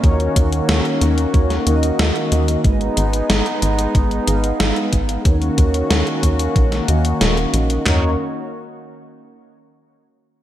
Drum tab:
HH |xxxxxxxxxxxxxxxx|xxxxxxxxxxxxxxxx|xxxxxxxxxxxxxxxx|----------------|
CP |----------------|----------------|----------------|x---------------|
SD |----o----o--o---|----o-------o---|----o----o--o---|o---------------|
FT |----------------|----------------|----------------|o---------------|
BD |o-o-----o-------|o-------o-----o-|o-o---o-o-------|----------------|